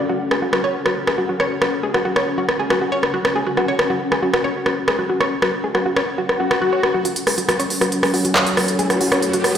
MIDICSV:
0, 0, Header, 1, 7, 480
1, 0, Start_track
1, 0, Key_signature, 3, "minor"
1, 0, Tempo, 434783
1, 104, Time_signature, 4, 2, 24, 8
1, 10574, End_track
2, 0, Start_track
2, 0, Title_t, "Ambient pad"
2, 0, Program_c, 0, 92
2, 0, Note_on_c, 0, 61, 76
2, 0, Note_on_c, 0, 66, 87
2, 0, Note_on_c, 0, 69, 82
2, 0, Note_on_c, 0, 78, 74
2, 7783, Note_off_c, 0, 69, 0
2, 7784, Note_off_c, 0, 66, 0
2, 7785, Note_off_c, 0, 78, 0
2, 8164, Note_on_c, 0, 66, 70
2, 8373, Note_on_c, 0, 69, 87
2, 8833, Note_on_c, 0, 78, 74
2, 10574, Note_off_c, 0, 61, 0
2, 10574, Note_off_c, 0, 66, 0
2, 10574, Note_off_c, 0, 69, 0
2, 10574, Note_off_c, 0, 78, 0
2, 10574, End_track
3, 0, Start_track
3, 0, Title_t, "Synth arpeggio sound"
3, 0, Program_c, 1, 84
3, 104, Note_on_c, 1, 66, 80
3, 210, Note_off_c, 1, 66, 0
3, 344, Note_on_c, 1, 68, 74
3, 451, Note_off_c, 1, 68, 0
3, 466, Note_on_c, 1, 66, 76
3, 535, Note_off_c, 1, 66, 0
3, 585, Note_on_c, 1, 66, 82
3, 627, Note_off_c, 1, 66, 0
3, 706, Note_on_c, 1, 73, 100
3, 810, Note_off_c, 1, 73, 0
3, 946, Note_on_c, 1, 66, 75
3, 1049, Note_off_c, 1, 66, 0
3, 1185, Note_on_c, 1, 68, 75
3, 1289, Note_off_c, 1, 68, 0
3, 1303, Note_on_c, 1, 66, 77
3, 1375, Note_off_c, 1, 66, 0
3, 1426, Note_on_c, 1, 66, 74
3, 1467, Note_off_c, 1, 66, 0
3, 1544, Note_on_c, 1, 73, 103
3, 1651, Note_off_c, 1, 73, 0
3, 1784, Note_on_c, 1, 66, 75
3, 1891, Note_off_c, 1, 66, 0
3, 2024, Note_on_c, 1, 68, 81
3, 2130, Note_off_c, 1, 68, 0
3, 2145, Note_on_c, 1, 66, 77
3, 2215, Note_off_c, 1, 66, 0
3, 2264, Note_on_c, 1, 66, 74
3, 2306, Note_off_c, 1, 66, 0
3, 2385, Note_on_c, 1, 73, 99
3, 2489, Note_off_c, 1, 73, 0
3, 2626, Note_on_c, 1, 66, 77
3, 2730, Note_off_c, 1, 66, 0
3, 2865, Note_on_c, 1, 68, 74
3, 2969, Note_off_c, 1, 68, 0
3, 2984, Note_on_c, 1, 66, 82
3, 3055, Note_off_c, 1, 66, 0
3, 3106, Note_on_c, 1, 66, 73
3, 3147, Note_off_c, 1, 66, 0
3, 3224, Note_on_c, 1, 73, 95
3, 3331, Note_off_c, 1, 73, 0
3, 3464, Note_on_c, 1, 66, 83
3, 3571, Note_off_c, 1, 66, 0
3, 3704, Note_on_c, 1, 68, 75
3, 3811, Note_off_c, 1, 68, 0
3, 3827, Note_on_c, 1, 66, 72
3, 3895, Note_off_c, 1, 66, 0
3, 3945, Note_on_c, 1, 66, 84
3, 3987, Note_off_c, 1, 66, 0
3, 4067, Note_on_c, 1, 73, 102
3, 4170, Note_off_c, 1, 73, 0
3, 4307, Note_on_c, 1, 66, 75
3, 4410, Note_off_c, 1, 66, 0
3, 4547, Note_on_c, 1, 68, 77
3, 4650, Note_off_c, 1, 68, 0
3, 4665, Note_on_c, 1, 66, 78
3, 4736, Note_off_c, 1, 66, 0
3, 4787, Note_on_c, 1, 66, 74
3, 4828, Note_off_c, 1, 66, 0
3, 4905, Note_on_c, 1, 73, 98
3, 5011, Note_off_c, 1, 73, 0
3, 5145, Note_on_c, 1, 66, 76
3, 5251, Note_off_c, 1, 66, 0
3, 5384, Note_on_c, 1, 68, 84
3, 5491, Note_off_c, 1, 68, 0
3, 5506, Note_on_c, 1, 66, 78
3, 5575, Note_off_c, 1, 66, 0
3, 5624, Note_on_c, 1, 66, 75
3, 5667, Note_off_c, 1, 66, 0
3, 5746, Note_on_c, 1, 73, 102
3, 5849, Note_off_c, 1, 73, 0
3, 5986, Note_on_c, 1, 66, 75
3, 6090, Note_off_c, 1, 66, 0
3, 6226, Note_on_c, 1, 68, 73
3, 6329, Note_off_c, 1, 68, 0
3, 6344, Note_on_c, 1, 66, 82
3, 6415, Note_off_c, 1, 66, 0
3, 6466, Note_on_c, 1, 66, 77
3, 6507, Note_off_c, 1, 66, 0
3, 6584, Note_on_c, 1, 73, 98
3, 6691, Note_off_c, 1, 73, 0
3, 6825, Note_on_c, 1, 66, 78
3, 6931, Note_off_c, 1, 66, 0
3, 7065, Note_on_c, 1, 66, 74
3, 7135, Note_off_c, 1, 66, 0
3, 7186, Note_on_c, 1, 66, 76
3, 7255, Note_off_c, 1, 66, 0
3, 7304, Note_on_c, 1, 66, 87
3, 7347, Note_off_c, 1, 66, 0
3, 7426, Note_on_c, 1, 73, 76
3, 7529, Note_off_c, 1, 73, 0
3, 7666, Note_on_c, 1, 66, 75
3, 7769, Note_off_c, 1, 66, 0
3, 7784, Note_on_c, 1, 66, 82
3, 7891, Note_off_c, 1, 66, 0
3, 8024, Note_on_c, 1, 68, 74
3, 8130, Note_off_c, 1, 68, 0
3, 8145, Note_on_c, 1, 66, 74
3, 8215, Note_off_c, 1, 66, 0
3, 8263, Note_on_c, 1, 66, 83
3, 8306, Note_off_c, 1, 66, 0
3, 8386, Note_on_c, 1, 73, 100
3, 8489, Note_off_c, 1, 73, 0
3, 8625, Note_on_c, 1, 66, 74
3, 8729, Note_off_c, 1, 66, 0
3, 8865, Note_on_c, 1, 68, 76
3, 8969, Note_off_c, 1, 68, 0
3, 8983, Note_on_c, 1, 66, 79
3, 9055, Note_off_c, 1, 66, 0
3, 9106, Note_on_c, 1, 66, 74
3, 9147, Note_off_c, 1, 66, 0
3, 9223, Note_on_c, 1, 73, 107
3, 9330, Note_off_c, 1, 73, 0
3, 9464, Note_on_c, 1, 66, 75
3, 9571, Note_off_c, 1, 66, 0
3, 9704, Note_on_c, 1, 68, 83
3, 9811, Note_off_c, 1, 68, 0
3, 9826, Note_on_c, 1, 66, 77
3, 9895, Note_off_c, 1, 66, 0
3, 9944, Note_on_c, 1, 66, 78
3, 9987, Note_off_c, 1, 66, 0
3, 10066, Note_on_c, 1, 73, 102
3, 10170, Note_off_c, 1, 73, 0
3, 10306, Note_on_c, 1, 66, 79
3, 10410, Note_off_c, 1, 66, 0
3, 10574, End_track
4, 0, Start_track
4, 0, Title_t, "Synth drone"
4, 0, Program_c, 2, 95
4, 7784, Note_on_c, 2, 54, 78
4, 7784, Note_on_c, 2, 61, 78
4, 10574, Note_off_c, 2, 54, 0
4, 10574, Note_off_c, 2, 61, 0
4, 10574, End_track
5, 0, Start_track
5, 0, Title_t, "Riser"
5, 0, Program_c, 3, 103
5, 7784, Note_on_c, 3, 60, 79
5, 10574, Note_off_c, 3, 60, 0
5, 10574, End_track
6, 0, Start_track
6, 0, Title_t, "Swell"
6, 0, Program_c, 4, 103
6, 6825, Note_on_c, 4, 60, 71
6, 7784, Note_off_c, 4, 60, 0
6, 10574, End_track
7, 0, Start_track
7, 0, Title_t, "Drums"
7, 344, Note_on_c, 9, 37, 69
7, 455, Note_off_c, 9, 37, 0
7, 584, Note_on_c, 9, 37, 91
7, 694, Note_off_c, 9, 37, 0
7, 945, Note_on_c, 9, 37, 68
7, 1056, Note_off_c, 9, 37, 0
7, 1185, Note_on_c, 9, 37, 89
7, 1296, Note_off_c, 9, 37, 0
7, 1544, Note_on_c, 9, 37, 61
7, 1654, Note_off_c, 9, 37, 0
7, 1784, Note_on_c, 9, 37, 96
7, 1894, Note_off_c, 9, 37, 0
7, 2146, Note_on_c, 9, 37, 67
7, 2256, Note_off_c, 9, 37, 0
7, 2386, Note_on_c, 9, 37, 91
7, 2496, Note_off_c, 9, 37, 0
7, 2744, Note_on_c, 9, 37, 68
7, 2854, Note_off_c, 9, 37, 0
7, 2984, Note_on_c, 9, 37, 94
7, 3095, Note_off_c, 9, 37, 0
7, 3346, Note_on_c, 9, 37, 67
7, 3456, Note_off_c, 9, 37, 0
7, 3586, Note_on_c, 9, 37, 93
7, 3696, Note_off_c, 9, 37, 0
7, 3944, Note_on_c, 9, 37, 60
7, 4055, Note_off_c, 9, 37, 0
7, 4184, Note_on_c, 9, 37, 92
7, 4295, Note_off_c, 9, 37, 0
7, 4546, Note_on_c, 9, 37, 66
7, 4656, Note_off_c, 9, 37, 0
7, 4786, Note_on_c, 9, 37, 94
7, 4896, Note_off_c, 9, 37, 0
7, 5144, Note_on_c, 9, 37, 65
7, 5255, Note_off_c, 9, 37, 0
7, 5385, Note_on_c, 9, 37, 90
7, 5495, Note_off_c, 9, 37, 0
7, 5747, Note_on_c, 9, 37, 64
7, 5857, Note_off_c, 9, 37, 0
7, 5986, Note_on_c, 9, 37, 89
7, 6097, Note_off_c, 9, 37, 0
7, 6345, Note_on_c, 9, 37, 61
7, 6455, Note_off_c, 9, 37, 0
7, 6584, Note_on_c, 9, 37, 88
7, 6695, Note_off_c, 9, 37, 0
7, 6946, Note_on_c, 9, 37, 60
7, 7057, Note_off_c, 9, 37, 0
7, 7186, Note_on_c, 9, 37, 91
7, 7296, Note_off_c, 9, 37, 0
7, 7544, Note_on_c, 9, 37, 64
7, 7655, Note_off_c, 9, 37, 0
7, 7784, Note_on_c, 9, 42, 64
7, 7894, Note_off_c, 9, 42, 0
7, 7906, Note_on_c, 9, 42, 68
7, 8016, Note_off_c, 9, 42, 0
7, 8025, Note_on_c, 9, 37, 63
7, 8025, Note_on_c, 9, 46, 102
7, 8135, Note_off_c, 9, 37, 0
7, 8135, Note_off_c, 9, 46, 0
7, 8146, Note_on_c, 9, 42, 66
7, 8257, Note_off_c, 9, 42, 0
7, 8264, Note_on_c, 9, 37, 85
7, 8264, Note_on_c, 9, 42, 65
7, 8375, Note_off_c, 9, 37, 0
7, 8375, Note_off_c, 9, 42, 0
7, 8386, Note_on_c, 9, 42, 67
7, 8497, Note_off_c, 9, 42, 0
7, 8504, Note_on_c, 9, 46, 103
7, 8615, Note_off_c, 9, 46, 0
7, 8626, Note_on_c, 9, 37, 63
7, 8626, Note_on_c, 9, 42, 69
7, 8736, Note_off_c, 9, 37, 0
7, 8736, Note_off_c, 9, 42, 0
7, 8744, Note_on_c, 9, 42, 67
7, 8855, Note_off_c, 9, 42, 0
7, 8866, Note_on_c, 9, 37, 81
7, 8866, Note_on_c, 9, 46, 59
7, 8976, Note_off_c, 9, 37, 0
7, 8976, Note_off_c, 9, 46, 0
7, 8984, Note_on_c, 9, 46, 104
7, 9095, Note_off_c, 9, 46, 0
7, 9106, Note_on_c, 9, 42, 70
7, 9216, Note_off_c, 9, 42, 0
7, 9224, Note_on_c, 9, 37, 60
7, 9224, Note_on_c, 9, 39, 119
7, 9224, Note_on_c, 9, 42, 65
7, 9335, Note_off_c, 9, 37, 0
7, 9335, Note_off_c, 9, 39, 0
7, 9335, Note_off_c, 9, 42, 0
7, 9345, Note_on_c, 9, 42, 68
7, 9456, Note_off_c, 9, 42, 0
7, 9464, Note_on_c, 9, 37, 89
7, 9464, Note_on_c, 9, 46, 107
7, 9574, Note_off_c, 9, 37, 0
7, 9574, Note_off_c, 9, 46, 0
7, 9585, Note_on_c, 9, 42, 71
7, 9696, Note_off_c, 9, 42, 0
7, 9704, Note_on_c, 9, 42, 66
7, 9814, Note_off_c, 9, 42, 0
7, 9825, Note_on_c, 9, 37, 62
7, 9825, Note_on_c, 9, 42, 68
7, 9936, Note_off_c, 9, 37, 0
7, 9936, Note_off_c, 9, 42, 0
7, 9944, Note_on_c, 9, 46, 110
7, 10054, Note_off_c, 9, 46, 0
7, 10066, Note_on_c, 9, 37, 84
7, 10066, Note_on_c, 9, 42, 64
7, 10176, Note_off_c, 9, 37, 0
7, 10176, Note_off_c, 9, 42, 0
7, 10184, Note_on_c, 9, 42, 67
7, 10294, Note_off_c, 9, 42, 0
7, 10305, Note_on_c, 9, 42, 69
7, 10416, Note_off_c, 9, 42, 0
7, 10424, Note_on_c, 9, 37, 63
7, 10424, Note_on_c, 9, 46, 111
7, 10534, Note_off_c, 9, 37, 0
7, 10534, Note_off_c, 9, 46, 0
7, 10574, End_track
0, 0, End_of_file